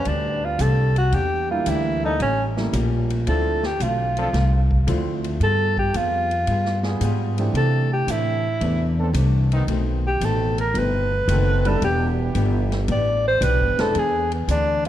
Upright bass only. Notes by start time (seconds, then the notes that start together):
0.06 D2
0.59 C2
1.12 E2
1.66 D2
2.19 A1
2.73 A#1
3.27 D2
3.80 B1
4.33 C2
4.87 D2
5.40 G2
5.94 F2
6.47 G2
7.01 G#2
7.54 C3
8.07 A2
8.61 E2
9.13 C2
9.67 B1
10.21 A1
10.74 G1
11.28 F#1
11.81 E1
12.35 G1
12.88 A1
13.41 B1
13.59 G1
13.77 E1
13.95 E2
14.48 D2